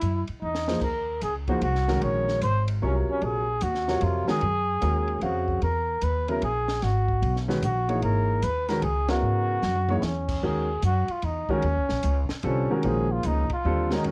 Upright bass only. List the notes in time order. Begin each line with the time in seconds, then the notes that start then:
0.02 F#2
0.29 muted upright bass stroke
0.42 E2
0.82 D#2
1.22 C#2
1.62 C2
2.02 A#1
2.42 G#1
2.83 C2
3.09 muted upright bass stroke
3.22 A#1
3.62 D#2
4.02 F2
4.29 muted upright bass stroke
4.42 F#2
4.82 D#2
5.22 F2
5.62 E2
6.02 D#2
6.42 A#1
6.82 G#1
7.22 B1
7.62 A#1
8.02 G#1
8.43 D#2
8.83 C#2
9.22 G#2
9.63 F#2
10.02 E2
10.43 D#2
10.82 F#2
11.09 muted upright bass stroke
11.23 E2
11.49 muted upright bass stroke
11.64 D#2
11.77 C#2
11.90 A#1
12.04 C#2
12.30 muted upright bass stroke
12.44 C2
12.70 muted upright bass stroke
12.84 A#1
13.25 C#2
13.50 muted upright bass stroke
13.65 D#2
14.05 F#2